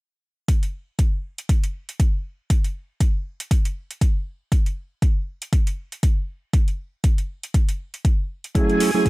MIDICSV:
0, 0, Header, 1, 4, 480
1, 0, Start_track
1, 0, Tempo, 504202
1, 461, Time_signature, 4, 2, 24, 8
1, 8658, End_track
2, 0, Start_track
2, 0, Title_t, "String machine"
2, 0, Program_c, 0, 50
2, 8139, Note_on_c, 0, 80, 87
2, 8140, Note_on_c, 0, 68, 85
2, 8658, Note_off_c, 0, 68, 0
2, 8658, Note_off_c, 0, 80, 0
2, 8658, End_track
3, 0, Start_track
3, 0, Title_t, "Tonewheel organ"
3, 0, Program_c, 1, 16
3, 8136, Note_on_c, 1, 54, 78
3, 8138, Note_on_c, 1, 57, 73
3, 8140, Note_on_c, 1, 61, 73
3, 8141, Note_on_c, 1, 64, 73
3, 8143, Note_on_c, 1, 68, 87
3, 8482, Note_off_c, 1, 54, 0
3, 8483, Note_off_c, 1, 57, 0
3, 8484, Note_off_c, 1, 61, 0
3, 8484, Note_off_c, 1, 64, 0
3, 8485, Note_off_c, 1, 68, 0
3, 8514, Note_on_c, 1, 54, 84
3, 8516, Note_on_c, 1, 57, 78
3, 8517, Note_on_c, 1, 61, 73
3, 8519, Note_on_c, 1, 64, 76
3, 8520, Note_on_c, 1, 68, 89
3, 8658, Note_off_c, 1, 54, 0
3, 8658, Note_off_c, 1, 57, 0
3, 8658, Note_off_c, 1, 61, 0
3, 8658, Note_off_c, 1, 64, 0
3, 8658, Note_off_c, 1, 68, 0
3, 8658, End_track
4, 0, Start_track
4, 0, Title_t, "Drums"
4, 461, Note_on_c, 9, 36, 109
4, 461, Note_on_c, 9, 42, 72
4, 556, Note_off_c, 9, 36, 0
4, 556, Note_off_c, 9, 42, 0
4, 598, Note_on_c, 9, 42, 34
4, 693, Note_off_c, 9, 42, 0
4, 941, Note_on_c, 9, 36, 113
4, 941, Note_on_c, 9, 42, 74
4, 1036, Note_off_c, 9, 36, 0
4, 1036, Note_off_c, 9, 42, 0
4, 1317, Note_on_c, 9, 42, 51
4, 1412, Note_off_c, 9, 42, 0
4, 1421, Note_on_c, 9, 36, 109
4, 1421, Note_on_c, 9, 42, 81
4, 1516, Note_off_c, 9, 36, 0
4, 1516, Note_off_c, 9, 42, 0
4, 1557, Note_on_c, 9, 42, 52
4, 1652, Note_off_c, 9, 42, 0
4, 1797, Note_on_c, 9, 42, 36
4, 1892, Note_off_c, 9, 42, 0
4, 1901, Note_on_c, 9, 36, 113
4, 1901, Note_on_c, 9, 42, 75
4, 1996, Note_off_c, 9, 36, 0
4, 1996, Note_off_c, 9, 42, 0
4, 2381, Note_on_c, 9, 36, 117
4, 2381, Note_on_c, 9, 42, 74
4, 2476, Note_off_c, 9, 36, 0
4, 2476, Note_off_c, 9, 42, 0
4, 2517, Note_on_c, 9, 42, 33
4, 2613, Note_off_c, 9, 42, 0
4, 2861, Note_on_c, 9, 36, 113
4, 2861, Note_on_c, 9, 42, 77
4, 2956, Note_off_c, 9, 36, 0
4, 2956, Note_off_c, 9, 42, 0
4, 3237, Note_on_c, 9, 42, 51
4, 3333, Note_off_c, 9, 42, 0
4, 3341, Note_on_c, 9, 36, 110
4, 3342, Note_on_c, 9, 42, 77
4, 3436, Note_off_c, 9, 36, 0
4, 3437, Note_off_c, 9, 42, 0
4, 3478, Note_on_c, 9, 42, 50
4, 3573, Note_off_c, 9, 42, 0
4, 3718, Note_on_c, 9, 42, 36
4, 3813, Note_off_c, 9, 42, 0
4, 3821, Note_on_c, 9, 36, 115
4, 3822, Note_on_c, 9, 42, 74
4, 3916, Note_off_c, 9, 36, 0
4, 3918, Note_off_c, 9, 42, 0
4, 4301, Note_on_c, 9, 36, 122
4, 4302, Note_on_c, 9, 42, 72
4, 4396, Note_off_c, 9, 36, 0
4, 4398, Note_off_c, 9, 42, 0
4, 4439, Note_on_c, 9, 42, 33
4, 4534, Note_off_c, 9, 42, 0
4, 4781, Note_on_c, 9, 36, 120
4, 4782, Note_on_c, 9, 42, 72
4, 4876, Note_off_c, 9, 36, 0
4, 4877, Note_off_c, 9, 42, 0
4, 5158, Note_on_c, 9, 42, 50
4, 5253, Note_off_c, 9, 42, 0
4, 5261, Note_on_c, 9, 36, 114
4, 5262, Note_on_c, 9, 42, 76
4, 5356, Note_off_c, 9, 36, 0
4, 5357, Note_off_c, 9, 42, 0
4, 5398, Note_on_c, 9, 42, 47
4, 5493, Note_off_c, 9, 42, 0
4, 5638, Note_on_c, 9, 42, 33
4, 5733, Note_off_c, 9, 42, 0
4, 5741, Note_on_c, 9, 36, 119
4, 5741, Note_on_c, 9, 42, 73
4, 5836, Note_off_c, 9, 36, 0
4, 5836, Note_off_c, 9, 42, 0
4, 6221, Note_on_c, 9, 36, 119
4, 6221, Note_on_c, 9, 42, 72
4, 6316, Note_off_c, 9, 36, 0
4, 6316, Note_off_c, 9, 42, 0
4, 6357, Note_on_c, 9, 42, 31
4, 6453, Note_off_c, 9, 42, 0
4, 6701, Note_on_c, 9, 36, 117
4, 6701, Note_on_c, 9, 42, 69
4, 6796, Note_off_c, 9, 36, 0
4, 6796, Note_off_c, 9, 42, 0
4, 6837, Note_on_c, 9, 42, 33
4, 6932, Note_off_c, 9, 42, 0
4, 7078, Note_on_c, 9, 42, 48
4, 7173, Note_off_c, 9, 42, 0
4, 7181, Note_on_c, 9, 36, 110
4, 7181, Note_on_c, 9, 42, 71
4, 7276, Note_off_c, 9, 36, 0
4, 7276, Note_off_c, 9, 42, 0
4, 7317, Note_on_c, 9, 42, 49
4, 7412, Note_off_c, 9, 42, 0
4, 7557, Note_on_c, 9, 42, 33
4, 7653, Note_off_c, 9, 42, 0
4, 7661, Note_on_c, 9, 36, 114
4, 7662, Note_on_c, 9, 42, 67
4, 7756, Note_off_c, 9, 36, 0
4, 7757, Note_off_c, 9, 42, 0
4, 8037, Note_on_c, 9, 42, 34
4, 8132, Note_off_c, 9, 42, 0
4, 8141, Note_on_c, 9, 36, 110
4, 8142, Note_on_c, 9, 42, 73
4, 8236, Note_off_c, 9, 36, 0
4, 8237, Note_off_c, 9, 42, 0
4, 8278, Note_on_c, 9, 42, 31
4, 8373, Note_off_c, 9, 42, 0
4, 8381, Note_on_c, 9, 46, 94
4, 8477, Note_off_c, 9, 46, 0
4, 8621, Note_on_c, 9, 36, 106
4, 8622, Note_on_c, 9, 42, 74
4, 8658, Note_off_c, 9, 36, 0
4, 8658, Note_off_c, 9, 42, 0
4, 8658, End_track
0, 0, End_of_file